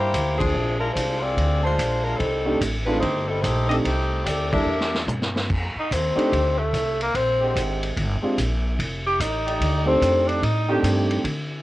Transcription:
Already playing: G2 A#3 E4 G4 C5
0.13 D2, kick, hi-hat pedal, ride
0.37 F3 C4 D4 G#4, kick, ride
0.54 A#1
0.79 G#3 D4 F4 A#4
0.93 C2 G#3 D4 F4 C5, kick, hi-hat pedal, ride
1.21 C4 F4 G#4 D5
1.37 D2, kick, ride
1.63 G#3 D4 F4 C5
1.79 A#1, kick, hi-hat pedal, ride
2.03 G#3 D4 F4 A#4
2.17 C2 G3 C4 D#4 A4, kick, ride
2.45 A3 C4 D4 D#4 G4
2.61 A1, kick, hi-hat pedal, ride
2.86 G#3 A3 C4 D4 D#4 F4 B4
2.99 G1 A3 D#4 G4 C5, kick, ride
3.28 G3 C4 D#4 A4
3.42 A#1 A3 D#4 G4 C5, kick, hi-hat pedal, ride
3.68 A3 C4 D4 D#4 G4 A4 D#5, ride
3.83 C2 A3 D#4 G4 C5, kick, ride
4.24 D2 C4 G4 A4 D5, kick, hi-hat pedal, ride
4.52 G3 A#3 D4 E4 G4 A4 A#4 E5, kick, ride
4.65 E2
4.81 snare
4.95 snare
5.07 G2, hi-hat pedal, mid tom
5.22 snare
5.36 snare
5.50 F2, kick, crash
5.76 D#4, muted upright bass stroke
5.91 D#2 C4, kick, hi-hat pedal, ride
6.16 A3 C4 D4 D#4 G4, muted upright bass stroke, ride
6.32 D2, kick, ride
6.58 A3
6.73 C2, kick, hi-hat pedal, ride
7.01 A#3, ride
7.15 A#1 C4, kick, ride
7.41 D3 G#3 C4 G4
7.56 G#1, kick, hi-hat pedal, ride
7.83 ride
7.97 G1, kick, ride
8.22 G#3 C4 D4 F4 G4, muted upright bass stroke
8.38 A#1, kick, hi-hat pedal, ride
8.79 F1, kick, ride
9.06 G4
9.20 A1 D#4, kick, hi-hat pedal, ride
9.46 A3 D#4 G4 D5, ride
9.60 D2, kick, ride
9.85 A3 C4 D4 D#4 G4
10.01 F2, kick, hi-hat pedal, ride
10.27 D4, ride
10.43 A2 D#4, kick, ride
10.68 D#3 A3 C4 D4 D#4 G4
10.83 G2, kick, hi-hat pedal, ride
11.11 ride
11.24 D3, kick, ride

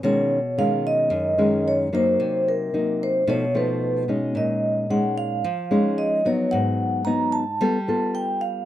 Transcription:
0.03 B2 D#3 G#3 C#4 C#5
0.58 D#3 G#3 C#4 F5
0.87 D#5
1.10 F#2
1.38 D#3 G#3 C#4
1.68 C#5
1.93 F#3 A#3 D#4 C5
2.20 C3
2.48 A#4
2.74 F#3 A#3 D#4
3.03 C5
3.27 B2 F3 A3 D#4 C#5
3.54 F3 A3 D#4 B4
4.08 G#3 C#4 D#4
4.35 A#2 D#5
4.90 G#3 C#4 D#4 F#5
5.18 F5
5.44 F3
5.71 G#3 C#4 D#4
5.98 D#5
6.25 F#3 B3 D#4 C#5
6.51 G#2 F#5
7.05 F#3 B3 D#4 A#5
7.32 A5
7.61 G3 B3 F4 A4
7.88 B3 F4 A4
8.15 G5
8.41 F5

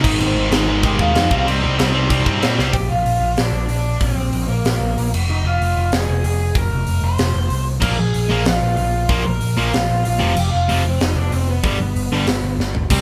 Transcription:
Already playing: D#4
0.03 G#1 G#2 D#3 G#3, kick, crash
0.19 G#1 G#2 D#3 G#3 C4 C5, crash
0.35 G#1 G#2 D#3 G#3
0.51 G#1 G#2 D#3 G#3, snare, crash
0.67 G#2 D#3 G#3 D#4 D#5
0.83 G#1 G#2 D#3 G#3 G4 G5, kick, crash
0.99 D#2 G#2 D#3 G#3 F4 F5, kick
1.14 F2 G#2 D#3 G#3, snare, crash
1.30 C2 C3 G3 C4, kick
1.35 F4 F5
1.44 C2 G3 C4 D#4 D#5
1.48 C3, crash
1.62 C2 C3 G3 C4
1.78 C2 C3 G3 C4, snare, crash
1.93 C3 G3 C4
2.10 C2 C3 G3 C4, kick, crash
2.24 G2 C3 G3 C4, kick
2.40 A#2 C3 G3 C4, snare, crash
2.57 C2 C3 G3 C4, snare
2.72 A#1 G4 G5, kick, open hi-hat
2.89 A#1 F4 F5
3.05 A#1, open hi-hat
3.21 A#1
3.37 A#1 D4 D5, snare, open hi-hat
3.53 A#1
3.67 A#1 D4 D5, open hi-hat
4.00 A#1 C4 C5, kick, open hi-hat
4.16 A#1
4.33 A#1, open hi-hat
4.48 A#1 A#3 A#4
4.64 A#1, snare, open hi-hat
4.81 A#1
4.98 A#1, open hi-hat
5.13 F1, crash
5.29 F1 D#4 D#5
5.44 F1 F4 F5
5.61 F1, open hi-hat
5.77 F1
5.92 F1 G#4 G#5, snare, open hi-hat
6.09 F1
6.24 F1 G#4 G#5, open hi-hat
6.55 F1 A#4 A#5, kick, open hi-hat
6.71 F1
6.87 F1, open hi-hat
7.02 F1 C5 C6
7.18 F1, snare, open hi-hat
7.35 F1
7.50 C2, open hi-hat
7.81 A#1 A#2 F3 A#3 A#4 A#5, kick, crash
7.96 A#1 G#4 G#5
8.14 A#1, open hi-hat
8.30 A#1 A#2 F3 A#3
8.45 A#1 F4 F5, snare, open hi-hat
8.62 A#1
8.76 A#1 F4 F5, open hi-hat
9.09 A#1 A#2 F3 A#3 C5 C6, kick, open hi-hat
9.26 A#1 A#4 A#5
9.41 A#1, open hi-hat
9.58 A#1 A#2 F3 A#3
9.72 A#1 F4 F5, snare, open hi-hat
9.90 A#1
10.05 A#1 F4 F5, open hi-hat
10.19 F1 F2 C3 F3
10.36 F1 G4 G5, crash
10.50 F1 F4 F5
10.69 F1 F2 C3 F3, open hi-hat
10.85 F1 C4 C5
11.00 F1 D#4 D#5, snare, open hi-hat
11.16 F1 D4 D5
11.31 F1 C4 C5, open hi-hat
11.49 B3 B4
11.63 G1 G2 D3 G3, kick, open hi-hat
11.80 G1
11.96 G1, open hi-hat
12.11 G1 G2 D3 G3
12.27 G1, snare, open hi-hat
12.43 G1
12.59 G1, snare
12.75 floor tom
12.90 C2 C3 G3 C4, kick, crash

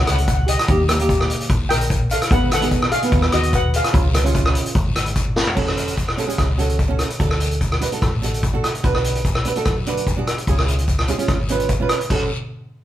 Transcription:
Already playing: A3 C#4 F#4
0.04 F#5, cross-stick, closed hi-hat
0.09 C#2 F#5
0.18 F#5, closed hi-hat
0.28 F#5, kick, closed hi-hat, short guiro
0.35 F#5
0.47 G4 D#5, closed hi-hat, short guiro
0.59 cross-stick, closed hi-hat
0.68 D#2 A#3 D#4 G4, kick, closed hi-hat, long guiro
0.88 A#3 D#4 G4, cross-stick, closed hi-hat, short guiro
0.99 A#3 D#4 G4, closed hi-hat
1.09 kick, closed hi-hat, short guiro
1.21 cross-stick
1.30 closed hi-hat
1.40 closed hi-hat
1.50 A#1, kick, closed hi-hat, long guiro
1.69 A#1 A#4 G5, cross-stick, closed hi-hat
1.81 closed hi-hat
1.90 kick, closed hi-hat, short guiro
2.10 A4 F5, closed hi-hat, short guiro
2.22 cross-stick, closed hi-hat
2.30 G#1 B3 D#4 G#4 B4 F#5, kick, closed hi-hat, long guiro
2.52 A4 F#5, cross-stick, closed hi-hat, short guiro
2.61 B3 D#4 G#4, closed hi-hat
2.71 kick, closed hi-hat, short guiro
2.82 cross-stick
2.92 G#4 F5, closed hi-hat
3.03 B3 D#4 B4, closed hi-hat
3.12 D#2, kick, closed hi-hat, long guiro
3.22 cross-stick
3.32 D#2 F#4 D#5, cross-stick, closed hi-hat
3.43 closed hi-hat
3.53 B4 F#5, kick, closed hi-hat, short guiro
3.74 G#4 F5, closed hi-hat, short guiro
3.84 cross-stick, closed hi-hat
3.93 C#2 C#4 F4 G#4, kick, closed hi-hat, long guiro
4.14 C#4 F4 B4, cross-stick, closed hi-hat, short guiro
4.24 C#4 F4 G#4, closed hi-hat
4.34 kick, closed hi-hat, short guiro
4.45 cross-stick
4.55 closed hi-hat
4.66 closed hi-hat
4.75 G#1, kick, closed hi-hat, long guiro
4.95 G#1, cross-stick, closed hi-hat
5.06 closed hi-hat
5.16 kick, closed hi-hat, short guiro
5.36 snare
5.47 floor tom
5.56 F#1 C#4 F#4 A4, kick, crash, long guiro
5.68 cross-stick
5.77 closed hi-hat
5.88 closed hi-hat
5.97 kick, closed hi-hat, short guiro
6.08 cross-stick
6.17 C#4 F#4 A4, closed hi-hat, short guiro
6.27 C#4 F#4 G#4, closed hi-hat
6.38 C#2, kick, cross-stick, closed hi-hat, long guiro
6.58 C#4 F#4 A4, closed hi-hat, short guiro
6.69 closed hi-hat
6.79 kick, closed hi-hat, short guiro
6.88 C#4 F#4 A4
6.99 cross-stick, closed hi-hat
7.10 closed hi-hat
7.19 D2 D4 F#4 A4, kick, closed hi-hat, long guiro
7.31 cross-stick
7.40 closed hi-hat
7.51 closed hi-hat
7.61 kick, closed hi-hat, short guiro
7.72 cross-stick
7.80 D4 F#4 B4, closed hi-hat, short guiro
7.92 D4 F#4 A4, closed hi-hat
8.01 A1, kick, cross-stick, closed hi-hat, long guiro
8.22 D4 F#4 A4, closed hi-hat, short guiro
8.34 closed hi-hat
8.43 kick, closed hi-hat, short guiro
8.53 D4 F#4 A4
8.64 cross-stick, closed hi-hat
8.75 closed hi-hat
8.83 B1 D4 F#4 B4, kick, closed hi-hat, long guiro
8.95 cross-stick
9.04 closed hi-hat
9.15 closed hi-hat
9.25 kick, closed hi-hat, short guiro
9.35 cross-stick
9.45 D4 F#4 B4, closed hi-hat
9.55 D4 F#4 A4, closed hi-hat
9.65 F#2, kick, cross-stick, closed hi-hat, long guiro
9.86 D4 F#4 B4, closed hi-hat, short guiro
9.97 closed hi-hat
10.07 kick, closed hi-hat, short guiro
10.17 D4 F#4 G#4
10.27 cross-stick, closed hi-hat
10.38 closed hi-hat
10.47 C#2 C#4 F4 G#4, kick, closed hi-hat, long guiro
10.58 cross-stick
10.68 closed hi-hat
10.79 closed hi-hat
10.88 kick, closed hi-hat, short guiro
10.99 cross-stick
11.08 C#4 F4 G#4, closed hi-hat, short guiro
11.18 C#4 F4 G#4, closed hi-hat
11.28 G#1, kick, cross-stick, closed hi-hat, long guiro
11.49 C#4 F4 B4, closed hi-hat, short guiro
11.60 closed hi-hat
11.69 kick, closed hi-hat, short guiro
11.80 C#4 F4 B4
11.89 cross-stick, closed hi-hat
12.01 closed hi-hat
12.10 F#1 C#4 F#4 A4, kick, crash, long guiro

